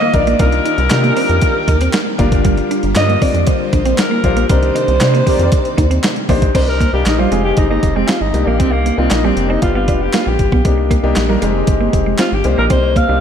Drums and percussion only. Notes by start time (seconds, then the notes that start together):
0.14 kick, closed hi-hat
0.27 closed hi-hat
0.39 kick, closed hi-hat
0.52 closed hi-hat
0.66 closed hi-hat
0.78 closed hi-hat
0.90 snare, clap, closed hi-hat
1.04 closed hi-hat
1.17 open hi-hat
1.29 closed hi-hat
1.41 kick, closed hi-hat
1.68 kick, closed hi-hat
1.81 closed hi-hat
1.93 snare, clap, closed hi-hat
2.19 kick, closed hi-hat
2.32 kick, closed hi-hat
2.45 kick, closed hi-hat
2.57 closed hi-hat
2.71 closed hi-hat
2.83 closed hi-hat
2.95 snare, clap, closed hi-hat
3.10 closed hi-hat
3.22 kick, open hi-hat
3.35 closed hi-hat
3.47 kick, closed hi-hat
3.73 kick, closed hi-hat
3.85 closed hi-hat
3.98 snare, clap, closed hi-hat
4.24 kick, closed hi-hat
4.37 closed hi-hat
4.49 kick, closed hi-hat
4.63 closed hi-hat
4.76 closed hi-hat
4.88 closed hi-hat
5.01 snare, clap, closed hi-hat
5.15 closed hi-hat
5.27 kick, open hi-hat
5.39 closed hi-hat
5.52 kick, closed hi-hat
5.65 closed hi-hat
5.78 kick, closed hi-hat
5.91 closed hi-hat
6.03 snare, clap, closed hi-hat
6.16 closed hi-hat
6.29 kick, open hi-hat
6.42 kick, closed hi-hat
6.55 kick, closed hi-hat, crash
6.81 kick, closed hi-hat
7.06 snare, clap, closed hi-hat
7.32 closed hi-hat
7.57 kick, closed hi-hat
7.83 kick, closed hi-hat
8.08 snare, clap, closed hi-hat
8.34 closed hi-hat
8.60 kick, closed hi-hat
8.86 closed hi-hat
9.10 snare, clap, closed hi-hat
9.37 closed hi-hat
9.62 kick, closed hi-hat
9.88 kick, closed hi-hat
10.13 snare, clap, closed hi-hat
10.39 kick, closed hi-hat
10.52 kick
10.65 kick, closed hi-hat
10.91 kick, closed hi-hat
11.16 snare, clap, closed hi-hat
11.42 closed hi-hat
11.67 kick, closed hi-hat
11.93 kick, closed hi-hat
12.18 snare, clap, closed hi-hat
12.44 closed hi-hat
12.70 kick, closed hi-hat
12.96 kick, closed hi-hat